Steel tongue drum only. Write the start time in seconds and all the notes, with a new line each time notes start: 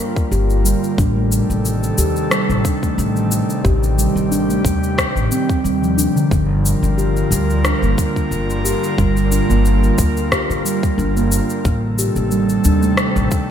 0.32 G4
0.65 G3
0.98 D4
1.16 A3
1.98 G4
2.32 G3
2.65 D4
2.83 A3
3.64 G4
3.98 G3
4.31 D4
4.50 A3
5.32 C4
5.65 G3
5.83 F3
5.98 D4
6.16 D3
6.98 G4
7.31 G3
7.65 D4
7.83 A#3
8.65 G4
8.98 G3
9.32 D4
9.50 A#3
10.32 G4
10.65 G3
10.99 D4
11.17 A#3
11.99 G4
12.32 G3
12.65 D4
12.83 A3